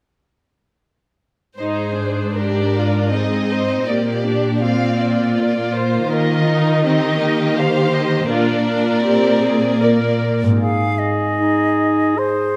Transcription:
1.57 cello section G#2, viola section D#4 G#4, violin section C5
2.00 viola section D4
2.35 viola section G4, violin section A#4 D5
2.77 viola section F4
3.13 viola section C4 D#4, violin section G#4 D#5
3.51 violin section C5
3.86 cello section A#2, viola section A#3 G4, violin section D5
4.26 viola section D4
4.60 viola section C4 F4, violin section D5 F5
4.99 violin section D5
5.38 viola section A#3, violin section D5
5.74 violin section C5
6.09 cello section D#3, viola section A#3, violin section A#4 D#5
6.50 viola section D#4
6.84 viola section C4 D#4, violin section G4 D#5
7.20 viola section A#3
7.55 viola section G4, violin section C5 F5
7.92 violin section D#5
8.27 cello section A#2, viola section D4 F4, violin section A#4 D5
8.67 viola section F4
9.05 viola section C4 G4
9.43 viola section G#4
9.81 viola section A#3 A#4, violin section D5
10.43 harp G#2
10.48 harp C4
10.52 harp D#4
10.57 harp G#4, flute F5
10.63 cor anglais G#4
10.99 flute D#5
11.38 clarinet D#4
12.16 clarinet G#4, cor anglais C5, flute C5

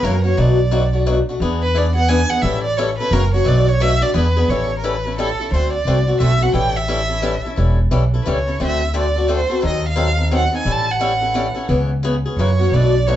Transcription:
0.03 upright bass F#2, steel-string acoustic guitar C#3 E3 A#3 C#4 F#4, violin A#4
0.24 steel-string acoustic guitar A#3 C#4 F#4, violin C#5
0.37 upright bass B1, steel-string acoustic guitar B2 F#3 A3 D4 F#4, violin D5
0.71 steel-string acoustic guitar B2 F#3 A3 D4 F#4
0.93 steel-string acoustic guitar A3 D4 F#4
1.06 steel-string acoustic guitar B2 F#3 A3 D4 F#4
1.29 steel-string acoustic guitar A3 D4 F#4
1.40 upright bass E2, steel-string acoustic guitar E3 B3 D4 G#4
1.63 violin B4
1.75 steel-string acoustic guitar E3 B3 D4 G#4, violin D5
1.95 steel-string acoustic guitar B3 D4 G#4, violin F#5
2.09 steel-string acoustic guitar E3 B3 D4 G#4, violin G#5
2.30 steel-string acoustic guitar B3 D4 G#4, violin F#5
2.42 upright bass A1, steel-string acoustic guitar E3 G3 C#4 E4 A4, violin E5
2.64 violin D5
2.77 steel-string acoustic guitar E3 G3 C#4 E4 A4, violin C#5
2.99 steel-string acoustic guitar C#4 E4 A4, violin B4
3.11 upright bass F#1, steel-string acoustic guitar C#3 E3 A#3 C#4 F#4, violin A#4
3.34 steel-string acoustic guitar A#3 C#4 F#4, violin C#5
3.44 upright bass B1, steel-string acoustic guitar B2 F#3 A3 D4 F#4
3.48 violin D5
3.68 violin C#5
3.80 steel-string acoustic guitar B2 F#3 A3 D4 F#4, violin E5
4.01 steel-string acoustic guitar A3 D4 F#4, violin D5
4.14 upright bass E2, steel-string acoustic guitar E3 B3 D4 G#4, violin B4
4.36 steel-string acoustic guitar B3 D4 G#4
4.48 upright bass A1, steel-string acoustic guitar E3 G3 C#4 E4 A4, violin C#5
4.78 violin A#4
4.84 steel-string acoustic guitar E3 G3 C#4 E4 A4, violin B4
5.05 steel-string acoustic guitar C#4 E4 A4
5.18 steel-string acoustic guitar E3 G3 C#4 E4 A4, violin A4
5.40 steel-string acoustic guitar C#4 E4 A4
5.51 upright bass D2, steel-string acoustic guitar D3 A3 C4 F#4 A4, violin C5
5.73 violin D5
5.85 upright bass C2, steel-string acoustic guitar D3 A3 C4 F#4 A4
6.07 steel-string acoustic guitar C4 F#4 A4
6.20 upright bass B1, steel-string acoustic guitar D3 A3 C4 F#4 A4, violin E5
6.41 steel-string acoustic guitar C4 F#4 A4, violin F#5
6.53 upright bass A1, steel-string acoustic guitar E3 G3 C#4 E4 A4, violin G5
6.76 violin E5
6.88 steel-string acoustic guitar E3 G3 C#4 E4 A4
7.09 steel-string acoustic guitar C#4 E4 A4
7.22 steel-string acoustic guitar E3 G3 C#4 E4 A4
7.45 steel-string acoustic guitar C#4 E4 A4
7.56 upright bass E1, steel-string acoustic guitar E3 G3 C#4 E4 A4
7.91 upright bass B1, steel-string acoustic guitar E3 G3 C#4 E4 A4
8.14 steel-string acoustic guitar C#4 E4 A4
8.22 upright bass C#2, steel-string acoustic guitar E3 E4, violin B4
8.27 steel-string acoustic guitar G3 C#4 A4, violin C#5
8.47 steel-string acoustic guitar C#4 E4 A4
8.60 upright bass D2, steel-string acoustic guitar D3 A3 C4 F#4 A4
8.65 violin E5
8.94 steel-string acoustic guitar D3 A3 C4 F#4 A4
8.99 violin D5
9.16 steel-string acoustic guitar C4 F#4 A4
9.28 steel-string acoustic guitar D3 A3 C4 F#4 A4
9.35 violin C5
9.50 steel-string acoustic guitar C4 F#4 A4
9.61 upright bass D#2, steel-string acoustic guitar D#3 F#3 C4 D#4 A4
9.68 violin D#5
9.89 violin F5
9.96 steel-string acoustic guitar D#3 F#3 C4 D#4 A4
10.17 steel-string acoustic guitar C4 D#4 A4
10.31 steel-string acoustic guitar D#3 F#3 C4 D#4 A4
10.36 violin F#5
10.52 steel-string acoustic guitar C4 D#4 A4
10.57 violin G#5
10.65 upright bass A1, steel-string acoustic guitar E3 G3 C#4 E4 A4
10.72 violin A5
10.91 violin F#5
10.99 steel-string acoustic guitar E3 G3 C#4 E4 A4
11.21 steel-string acoustic guitar C#4 E4 A4
11.34 steel-string acoustic guitar E3 G3 C#4 E4 A4
11.54 steel-string acoustic guitar C#4 E4 A4
11.68 upright bass C#2, steel-string acoustic guitar C#3 E3 B3 C#4 G#4
12.03 steel-string acoustic guitar C#3 E3 B3 C#4 G#4
12.26 steel-string acoustic guitar B3 C#4 G#4
12.37 upright bass F#2, steel-string acoustic guitar C#3 E3 A#3 C#4 F#4, violin C#5
12.59 steel-string acoustic guitar A#3 C#4 F#4
12.72 upright bass B1, steel-string acoustic guitar B2 F#3 A3 D4 F#4, violin D5
13.07 steel-string acoustic guitar B2 F#3 A3 D4 F#4, violin C#5

